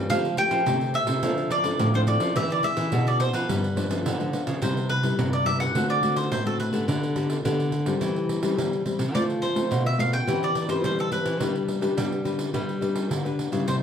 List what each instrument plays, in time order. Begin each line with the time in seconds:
0.10 nylon-string guitar F3 A3 C4 G4, mandolin F5, pandeiro
0.25 pandeiro
0.37 nylon-string guitar A3 C4 G4, mandolin G5, pandeiro
0.51 nylon-string guitar F3, pandeiro
0.66 nylon-string guitar C3 A3 C4 G4, pandeiro
0.81 pandeiro
0.94 mandolin E5, pandeiro
1.07 nylon-string guitar C3, pandeiro
1.23 nylon-string guitar F3 C4 D4 A4, pandeiro
1.38 pandeiro
1.50 mandolin D5, pandeiro
1.64 nylon-string guitar C4 D4 A4, pandeiro
1.79 nylon-string guitar A2 F3, pandeiro
1.94 nylon-string guitar C4 D4 A4, mandolin C5, pandeiro
2.07 nylon-string guitar C4 D4 A4, mandolin D5, pandeiro
2.20 nylon-string guitar F3, pandeiro
2.36 nylon-string guitar E3 B3 E4 G#4, mandolin E5, pandeiro
2.50 mandolin D5, pandeiro
2.63 nylon-string guitar B3 E4 G#4, mandolin E5, pandeiro
2.77 nylon-string guitar E3, pandeiro
2.92 nylon-string guitar B2 B3 E4 G#4, pandeiro
3.07 mandolin D5, pandeiro
3.20 mandolin C5, pandeiro
3.33 nylon-string guitar F3, mandolin B4, pandeiro
3.48 nylon-string guitar G2 F3 G3 B3 D4, pandeiro
3.64 pandeiro
3.76 nylon-string guitar F3 B3 D4, pandeiro
3.89 nylon-string guitar F3 B3 D4, pandeiro
4.05 nylon-string guitar D3, pandeiro
4.20 nylon-string guitar F3 B3 D4, pandeiro
4.33 nylon-string guitar F3 B3 D4, pandeiro
4.47 nylon-string guitar C#3, pandeiro
4.62 nylon-string guitar C3 G3 B3 E4, mandolin C5, pandeiro
4.77 pandeiro
4.89 mandolin B4, pandeiro
5.03 nylon-string guitar G3 B3 E4, pandeiro
5.19 nylon-string guitar G2 C3, pandeiro
5.33 mandolin D5, pandeiro
5.46 nylon-string guitar G3 B3 E4, mandolin E5, pandeiro
5.60 mandolin F#5, pandeiro
5.75 nylon-string guitar D3 A3 C4 F#4, pandeiro
5.90 mandolin D5, pandeiro
6.02 nylon-string guitar A3 C4 F#4, pandeiro
6.16 mandolin C5, pandeiro
6.31 nylon-string guitar A2, mandolin C5, pandeiro
6.46 nylon-string guitar A3 C4 F#4, mandolin A4, pandeiro
6.60 mandolin B4, pandeiro
6.72 nylon-string guitar D3 B3 G4 A4, pandeiro
6.88 nylon-string guitar D3, pandeiro
7.03 pandeiro
7.16 nylon-string guitar B3 G4 A4, pandeiro
7.30 pandeiro
7.45 nylon-string guitar D3 B3 G4 A4, pandeiro
7.60 pandeiro
7.72 pandeiro
7.86 nylon-string guitar G3 C4 G4, pandeiro
8.01 nylon-string guitar E3, pandeiro
8.16 pandeiro
8.29 pandeiro
8.42 nylon-string guitar G3 C4 G4, pandeiro
8.57 nylon-string guitar E3 G3, pandeiro
8.73 pandeiro
8.85 nylon-string guitar G3 C4 G4, pandeiro
8.99 nylon-string guitar C3, pandeiro
9.14 nylon-string guitar F3 A3 C4 F4, mandolin D5, pandeiro
9.30 pandeiro
9.42 mandolin C5, pandeiro
9.55 nylon-string guitar A3 C4 F4, pandeiro
9.71 nylon-string guitar B2, pandeiro
9.86 mandolin E5, pandeiro
9.98 nylon-string guitar A3 C4 F4, mandolin F5, pandeiro
10.13 mandolin G5, pandeiro
10.27 nylon-string guitar E3 C4 G4 B4, pandeiro
10.43 mandolin D5, pandeiro
10.55 pandeiro
10.68 nylon-string guitar C4 G4 B4, mandolin C5, pandeiro
10.84 nylon-string guitar E3 G3, mandolin C5, pandeiro
10.99 mandolin A4, pandeiro
11.11 nylon-string guitar C4 G4 B4, mandolin B4, pandeiro
11.26 nylon-string guitar E3, pandeiro
11.40 nylon-string guitar G3 D4 G4 B4, pandeiro
11.55 pandeiro
11.68 pandeiro
11.81 nylon-string guitar D4 G4 B4, pandeiro
11.97 nylon-string guitar D3 G3, pandeiro
12.12 pandeiro
12.24 nylon-string guitar D4 G4 B4, pandeiro
12.39 pandeiro
12.53 nylon-string guitar G3 D4 G4 B4, pandeiro
12.69 pandeiro
12.81 nylon-string guitar D4 G4 B4, pandeiro
12.96 pandeiro
13.10 nylon-string guitar D3, pandeiro
13.25 nylon-string guitar D4 G4 B4, pandeiro
13.39 pandeiro
13.52 nylon-string guitar C#3 G3 B3 E4, pandeiro
13.67 nylon-string guitar C3, mandolin C5, pandeiro